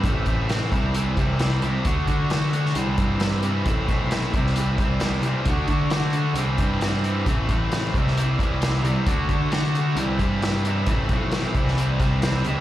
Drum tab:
HH |x-x-x-x-x-x-x-x-|x-x-x-x-x-x-x-x-|x-x-x-x-x-x-x-x-|x-x-x-x-x-x-x-x-|
SD |----o-------o---|----o--o----o---|----o--o----o---|----o-------o---|
BD |o-o---o---o-----|o-o-------o-----|o-o---o---o-----|o-o-------o-----|

HH |x-x-x-x-x-x-x-x-|x-x-x-x-x-x-x-x-|x-x-x-x-x-x-x-x-|
SD |----o--o----o---|----o-------o---|----o--o----o---|
BD |o-o---o---o-----|o-o-------o-----|o-o---o---o-----|